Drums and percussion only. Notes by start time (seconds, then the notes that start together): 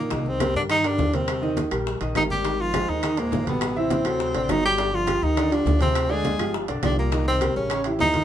0.10 high bongo, high conga, high timbale
0.26 high bongo, high conga
0.40 high bongo, high conga, high timbale, low timbale, claves
0.55 high bongo, high conga
0.70 high bongo, high conga, high timbale, claves
0.84 high bongo, high conga, high timbale
0.98 high bongo, low bongo, high conga, low timbale
1.13 high conga, high timbale
1.28 high bongo, high conga, high timbale, claves
1.43 high bongo, high conga
1.57 high bongo, high conga, high timbale, low timbale
1.71 high bongo, high conga, high timbale, claves
1.86 high bongo, high conga
2.01 high bongo, high conga, high timbale
2.15 high bongo, low bongo, high conga, high timbale, low timbale, claves
2.30 high conga
2.45 high bongo, high conga, high timbale
2.60 high bongo, high conga
2.74 high bongo, high conga, high timbale, low timbale, claves
2.89 high bongo, high conga
3.03 high bongo, high conga, high timbale, claves
3.17 high bongo, high conga, high timbale
3.32 high bongo, low bongo, high conga, low timbale
3.47 high conga, high timbale
3.61 high bongo, high conga, high timbale, claves
3.77 high bongo, high conga
3.90 high bongo, high conga, high timbale, low timbale
4.05 high bongo, high conga, high timbale, claves
4.20 high bongo, high conga
4.34 high bongo, high conga, high timbale
4.49 high bongo, low bongo, high conga, high timbale, low timbale, claves
4.78 high bongo, high conga, high timbale
4.93 high bongo, high conga
5.07 high bongo, high conga, high timbale, low timbale, claves
5.22 high bongo, high conga
5.37 high bongo, high conga, high timbale, claves
5.51 high bongo, high conga, high timbale
5.66 high bongo, low bongo, high conga, low timbale
5.81 high conga, high timbale
5.95 high bongo, high conga, high timbale, claves
6.10 high bongo, high conga
6.24 high bongo, high conga, high timbale, low timbale
6.39 high bongo, high conga, high timbale, claves
6.54 high bongo, high conga
6.68 high bongo, high conga, high timbale
6.83 high bongo, low bongo, high conga, high timbale, low timbale, claves
7.12 high bongo, high timbale
7.27 high bongo, high conga
7.41 high bongo, high conga, high timbale, low timbale, claves
7.56 high bongo, high conga
7.70 high bongo, high conga, high timbale, claves
7.84 high bongo, high conga, high timbale
7.99 high bongo, low bongo, high conga, low timbale
8.14 high conga, high timbale